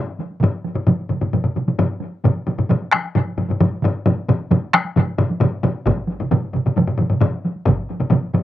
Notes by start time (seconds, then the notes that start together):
0.08 taiko high
0.19 taiko high
0.31 taiko high
0.40 taiko low-mid, taiko mid, taiko high
0.54 taiko high
0.65 taiko high
0.74 taiko low-mid, taiko mid, taiko high
0.87 taiko low-mid, taiko mid, taiko high
0.99 taiko high
1.09 taiko low-mid, taiko mid, taiko high
1.21 taiko low-mid, taiko mid, taiko high
1.33 taiko low-mid, taiko mid, taiko high
1.44 taiko low-mid, taiko mid
1.56 taiko low-mid, taiko mid, taiko high
1.67 taiko low-mid, taiko mid, taiko high
1.78 taiko low-mid, taiko mid, taiko high
2.00 taiko high
2.24 taiko low-mid, taiko mid, taiko high
2.36 taiko high
2.47 taiko low-mid, taiko mid, taiko high
2.58 taiko low-mid, taiko mid, taiko high
2.69 taiko low-mid, taiko mid, taiko high
2.82 taiko high
2.92 taiko rim, taiko high
3.05 taiko high
3.15 taiko low-mid, taiko mid, taiko high
3.28 taiko high
3.38 taiko low-mid, taiko mid, taiko high
3.49 taiko low-mid, taiko mid, taiko high
3.60 taiko low-mid, taiko mid, taiko high
3.73 taiko high
3.82 taiko low-mid, taiko mid, taiko high
3.95 taiko high
4.06 taiko low-mid, taiko mid, taiko high
4.17 taiko high
4.28 taiko low-mid, taiko mid, taiko high
4.39 taiko high
4.51 taiko low-mid, taiko mid, taiko high
4.62 taiko high
4.74 taiko rim, taiko high
4.85 taiko high
4.96 taiko low-mid, taiko mid, taiko high
5.08 taiko high
5.18 taiko low-mid, taiko mid, taiko high
5.30 taiko high
5.40 taiko low-mid, taiko mid, taiko high
5.63 taiko low-mid, taiko mid, taiko high
5.86 taiko, taiko low-mid, taiko mid, taiko high
5.97 taiko high
6.08 taiko high
6.20 taiko low-mid, taiko mid, taiko high
6.31 taiko low-mid, taiko mid, taiko high
6.43 taiko high
6.53 taiko low-mid, taiko mid, taiko high
6.66 taiko low-mid, taiko mid, taiko high
6.76 taiko low-mid, taiko mid, taiko high
6.88 taiko low-mid, taiko mid
6.99 taiko low-mid, taiko mid, taiko high
7.10 taiko low-mid, taiko mid, taiko high
7.21 taiko low-mid, taiko mid, taiko high
7.34 taiko high
7.45 taiko high
7.56 taiko high
7.65 taiko, taiko low-mid, taiko mid, taiko high
7.79 taiko high
7.90 taiko high
8.00 taiko low-mid, taiko mid
8.10 taiko low-mid, taiko mid, taiko high
8.23 taiko high
8.34 taiko low-mid, taiko mid, taiko high